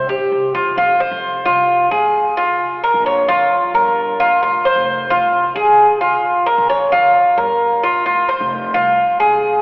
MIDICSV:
0, 0, Header, 1, 3, 480
1, 0, Start_track
1, 0, Key_signature, -4, "minor"
1, 0, Tempo, 455235
1, 816, Time_signature, 4, 2, 24, 8
1, 10141, End_track
2, 0, Start_track
2, 0, Title_t, "Cuban tres"
2, 0, Program_c, 0, 25
2, 96, Note_on_c, 0, 67, 73
2, 562, Note_off_c, 0, 67, 0
2, 576, Note_on_c, 0, 65, 76
2, 809, Note_off_c, 0, 65, 0
2, 820, Note_on_c, 0, 65, 85
2, 1051, Note_off_c, 0, 65, 0
2, 1058, Note_on_c, 0, 72, 77
2, 1523, Note_off_c, 0, 72, 0
2, 1534, Note_on_c, 0, 65, 90
2, 2002, Note_off_c, 0, 65, 0
2, 2018, Note_on_c, 0, 68, 70
2, 2484, Note_off_c, 0, 68, 0
2, 2501, Note_on_c, 0, 65, 84
2, 2966, Note_off_c, 0, 65, 0
2, 2990, Note_on_c, 0, 70, 81
2, 3218, Note_off_c, 0, 70, 0
2, 3227, Note_on_c, 0, 73, 69
2, 3456, Note_off_c, 0, 73, 0
2, 3464, Note_on_c, 0, 65, 90
2, 3928, Note_off_c, 0, 65, 0
2, 3951, Note_on_c, 0, 70, 76
2, 4411, Note_off_c, 0, 70, 0
2, 4428, Note_on_c, 0, 65, 89
2, 4657, Note_off_c, 0, 65, 0
2, 4668, Note_on_c, 0, 65, 75
2, 4897, Note_off_c, 0, 65, 0
2, 4906, Note_on_c, 0, 72, 81
2, 5369, Note_off_c, 0, 72, 0
2, 5382, Note_on_c, 0, 65, 89
2, 5847, Note_off_c, 0, 65, 0
2, 5859, Note_on_c, 0, 68, 75
2, 6326, Note_off_c, 0, 68, 0
2, 6336, Note_on_c, 0, 65, 78
2, 6804, Note_off_c, 0, 65, 0
2, 6815, Note_on_c, 0, 70, 80
2, 7051, Note_off_c, 0, 70, 0
2, 7059, Note_on_c, 0, 73, 79
2, 7293, Note_off_c, 0, 73, 0
2, 7298, Note_on_c, 0, 65, 89
2, 7765, Note_off_c, 0, 65, 0
2, 7778, Note_on_c, 0, 70, 70
2, 8245, Note_off_c, 0, 70, 0
2, 8260, Note_on_c, 0, 65, 84
2, 8483, Note_off_c, 0, 65, 0
2, 8496, Note_on_c, 0, 65, 71
2, 8731, Note_off_c, 0, 65, 0
2, 8738, Note_on_c, 0, 72, 83
2, 9204, Note_off_c, 0, 72, 0
2, 9218, Note_on_c, 0, 65, 88
2, 9684, Note_off_c, 0, 65, 0
2, 9699, Note_on_c, 0, 68, 73
2, 10141, Note_off_c, 0, 68, 0
2, 10141, End_track
3, 0, Start_track
3, 0, Title_t, "Upright bass"
3, 0, Program_c, 1, 32
3, 90, Note_on_c, 1, 34, 72
3, 321, Note_off_c, 1, 34, 0
3, 336, Note_on_c, 1, 36, 83
3, 552, Note_off_c, 1, 36, 0
3, 577, Note_on_c, 1, 40, 77
3, 793, Note_off_c, 1, 40, 0
3, 814, Note_on_c, 1, 41, 97
3, 1158, Note_off_c, 1, 41, 0
3, 1174, Note_on_c, 1, 41, 94
3, 1518, Note_off_c, 1, 41, 0
3, 1539, Note_on_c, 1, 36, 79
3, 1995, Note_off_c, 1, 36, 0
3, 2020, Note_on_c, 1, 39, 84
3, 2739, Note_off_c, 1, 39, 0
3, 2739, Note_on_c, 1, 34, 106
3, 3081, Note_off_c, 1, 34, 0
3, 3100, Note_on_c, 1, 34, 88
3, 3442, Note_off_c, 1, 34, 0
3, 3461, Note_on_c, 1, 41, 85
3, 3916, Note_off_c, 1, 41, 0
3, 3943, Note_on_c, 1, 31, 90
3, 4662, Note_off_c, 1, 31, 0
3, 4662, Note_on_c, 1, 29, 99
3, 5004, Note_off_c, 1, 29, 0
3, 5018, Note_on_c, 1, 29, 95
3, 5361, Note_off_c, 1, 29, 0
3, 5383, Note_on_c, 1, 36, 78
3, 5838, Note_off_c, 1, 36, 0
3, 5858, Note_on_c, 1, 39, 79
3, 6582, Note_off_c, 1, 39, 0
3, 6582, Note_on_c, 1, 34, 99
3, 6923, Note_off_c, 1, 34, 0
3, 6939, Note_on_c, 1, 34, 98
3, 7282, Note_off_c, 1, 34, 0
3, 7296, Note_on_c, 1, 41, 87
3, 7754, Note_off_c, 1, 41, 0
3, 7774, Note_on_c, 1, 31, 88
3, 8499, Note_off_c, 1, 31, 0
3, 8499, Note_on_c, 1, 29, 98
3, 8842, Note_off_c, 1, 29, 0
3, 8861, Note_on_c, 1, 29, 94
3, 9202, Note_off_c, 1, 29, 0
3, 9220, Note_on_c, 1, 36, 82
3, 9675, Note_off_c, 1, 36, 0
3, 9700, Note_on_c, 1, 39, 81
3, 10141, Note_off_c, 1, 39, 0
3, 10141, End_track
0, 0, End_of_file